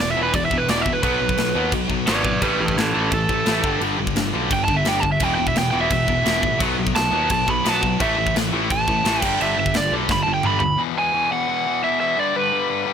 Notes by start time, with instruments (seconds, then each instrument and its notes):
Already playing: distorted electric guitar E2 B2 E3
0.00 picked electric bass E1, distorted electric guitar E2 B2, overdriven electric guitar D5
0.11 overdriven electric guitar E5
0.16 picked electric bass E1, distorted electric guitar E2 B2 E3
0.23 overdriven electric guitar B4
0.34 picked electric bass E1, distorted electric guitar E2 B2, overdriven electric guitar D5, kick, crash
0.45 overdriven electric guitar E5
0.51 picked electric bass E1, distorted electric guitar E2 B2 E3, kick
0.58 overdriven electric guitar B4
0.68 picked electric bass E1, distorted electric guitar E2 B2 E3, overdriven electric guitar D5, snare, crash
0.81 overdriven electric guitar E5
0.86 picked electric bass E1, distorted electric guitar E2 B2, kick
0.93 overdriven electric guitar B4
1.02 picked electric bass B1, distorted electric guitar B2 F#3 B3, overdriven electric guitar B4, kick, crash
1.20 picked electric bass B1, distorted electric guitar B2 F#3
1.29 kick
1.37 picked electric bass B1, distorted electric guitar B2 F#3, snare, crash
1.55 picked electric bass D#2, distorted electric guitar B2 F#3 B3
1.72 picked electric bass B1, distorted electric guitar B2 F#3, kick, crash
1.88 picked electric bass B1, distorted electric guitar B2 F#3 B3, kick
2.06 picked electric bass G#1, distorted electric guitar B2 F#3 B3, overdriven electric guitar B4 D5, snare, crash
2.24 distorted electric guitar B2 F#3, overdriven electric guitar B4 D5, kick
2.41 picked electric bass A1, distorted electric guitar A2 E3 A3, overdriven electric guitar G4 B4, kick, crash
2.60 picked electric bass A1, distorted electric guitar A2 E3, overdriven electric guitar G4 B4
2.68 kick
2.77 picked electric bass A1, distorted electric guitar A2 E3, overdriven electric guitar C#4 A4, snare, crash
2.94 picked electric bass A1, distorted electric guitar A2 E3 A3, overdriven electric guitar C#4 A4
3.11 picked electric bass A1, distorted electric guitar A2 E3, overdriven electric guitar A4, kick, crash
3.29 picked electric bass A1, distorted electric guitar A2 E3 A3, kick
3.45 picked electric bass A1, distorted electric guitar A2 E3 A3, snare, crash
3.50 distorted electric guitar A3
3.63 picked electric bass G1, distorted electric guitar G2 D3 G3, kick
3.81 picked electric bass G1, distorted electric guitar G2 D3 G3, crash
3.98 picked electric bass G1, distorted electric guitar G2 D3
4.07 kick
4.16 picked electric bass G1, distorted electric guitar G2 D3, snare, crash
4.33 picked electric bass B1, distorted electric guitar G2 D3 G3
4.51 picked electric bass G1, distorted electric guitar G2 D3 G3, overdriven electric guitar G5, kick, crash
4.65 distorted electric guitar G2 G3, overdriven electric guitar A5, kick
4.69 picked electric bass G1, distorted electric guitar D3
4.76 overdriven electric guitar E5
4.85 picked electric bass G1, distorted electric guitar G2 D3 G3, overdriven electric guitar G5, snare, crash
5.00 distorted electric guitar G2 D3, overdriven electric guitar A5, kick
5.12 overdriven electric guitar E5
5.20 picked electric bass E1, distorted electric guitar E2 B2 E3, overdriven electric guitar G5, kick, crash
5.35 distorted electric guitar E2 B2, overdriven electric guitar G5
5.40 picked electric bass E1
5.47 overdriven electric guitar E5, kick
5.55 picked electric bass E1, distorted electric guitar E2 B2, overdriven electric guitar G5, snare, crash
5.71 picked electric bass E1, distorted electric guitar E2 B2 E3, overdriven electric guitar G5
5.81 overdriven electric guitar E5
5.89 picked electric bass E1, distorted electric guitar E2 B2, overdriven electric guitar E5, kick, crash
6.06 picked electric bass E1, distorted electric guitar E2 B2 E3, kick
6.23 picked electric bass E1, distorted electric guitar E2 B2 E3, snare, crash
6.41 picked electric bass A1, distorted electric guitar E2 B2, kick
6.58 picked electric bass B1, distorted electric guitar B2 F#3 B3, kick, crash
6.76 picked electric bass B1, distorted electric guitar B2 F#3
6.87 kick
6.93 picked electric bass B1, distorted electric guitar B2 F#3, overdriven electric guitar A5, snare, crash
7.11 picked electric bass D#2, distorted electric guitar B2 F#3 B3
7.29 picked electric bass B1, distorted electric guitar B2 F#3, overdriven electric guitar A5, kick, crash
7.46 picked electric bass B1, distorted electric guitar B2 F#3 B3, overdriven electric guitar B5, kick
7.63 picked electric bass B1, distorted electric guitar B2 F#3 B3, snare, crash
7.69 overdriven electric guitar A5
7.81 distorted electric guitar B2 F#3, kick
7.99 picked electric bass A1, distorted electric guitar A2 E3 A3, overdriven electric guitar E5, kick, crash
8.17 picked electric bass A1, distorted electric guitar A2 E3
8.27 kick
8.35 picked electric bass A1, distorted electric guitar A2 E3, snare, crash
8.52 picked electric bass A1, distorted electric guitar A2 E3 A3
8.70 picked electric bass A1, distorted electric guitar A2 E3, overdriven electric guitar A5, kick, crash
8.87 picked electric bass A1, distorted electric guitar A2 E3 A3, kick
9.04 picked electric bass A1, distorted electric guitar A2 E3 A3, snare, crash
9.21 picked electric bass G1, distorted electric guitar G2 D3 G3, overdriven electric guitar G5, kick, crash
9.39 picked electric bass G1, distorted electric guitar G2 D3 G3, overdriven electric guitar E5, crash
9.56 picked electric bass G1, distorted electric guitar G2 D3, overdriven electric guitar E5
9.66 kick
9.74 picked electric bass G1, distorted electric guitar G2 D3, overdriven electric guitar D5, snare, crash
9.92 picked electric bass B1, distorted electric guitar G2 D3 G3
10.09 picked electric bass G1, distorted electric guitar G2 D3 G3, overdriven electric guitar B5, kick, snare
10.23 picked electric bass G1, distorted electric guitar G2 D3 G3, overdriven electric guitar A5
10.34 overdriven electric guitar G5
10.43 picked electric bass G1, distorted electric guitar G2 D3 G3, overdriven electric guitar B5, mid tom
10.59 distorted electric guitar G2 D3, overdriven electric guitar B5, floor tom
10.78 distorted electric guitar E2 B2 E3
10.95 distorted electric guitar E2 B2 E3, overdriven electric guitar G#5
11.13 distorted electric guitar E2 B2 E3
11.30 distorted electric guitar E2 B2 E3, overdriven electric guitar F#5
11.48 distorted electric guitar E2 B2 E3
11.66 distorted electric guitar E2 B2 E3
11.83 distorted electric guitar E2 B2 E3, overdriven electric guitar E5
12.00 distorted electric guitar E2 B2 E3, overdriven electric guitar E5
12.17 distorted electric guitar G2 D3 G3, overdriven electric guitar D5
12.35 distorted electric guitar G2 D3 G3, overdriven electric guitar B4
12.52 distorted electric guitar G2 D3 G3
12.68 distorted electric guitar G2 D3 G3
12.86 distorted electric guitar G2 D3 G3